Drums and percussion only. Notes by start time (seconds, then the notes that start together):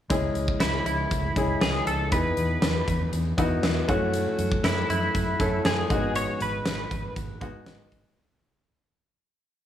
0.10 kick, closed hi-hat
0.35 closed hi-hat
0.48 kick
0.60 snare, closed hi-hat
0.86 closed hi-hat
1.11 kick, closed hi-hat
1.36 kick, closed hi-hat
1.61 snare, closed hi-hat
1.87 closed hi-hat
2.12 kick, closed hi-hat
2.37 closed hi-hat
2.62 snare, closed hi-hat
2.88 kick, closed hi-hat
3.13 closed hi-hat
3.38 kick, closed hi-hat
3.63 snare, closed hi-hat
3.89 kick, closed hi-hat
4.14 closed hi-hat
4.39 closed hi-hat
4.52 kick
4.64 snare, closed hi-hat
4.90 closed hi-hat
5.15 kick, closed hi-hat
5.40 kick, closed hi-hat
5.65 snare, closed hi-hat
5.90 kick, closed hi-hat
6.16 closed hi-hat
6.40 closed hi-hat
6.66 snare, closed hi-hat
6.91 kick, closed hi-hat
7.16 kick, closed hi-hat
7.41 kick, closed hi-hat
7.66 snare, closed hi-hat
7.92 kick, closed hi-hat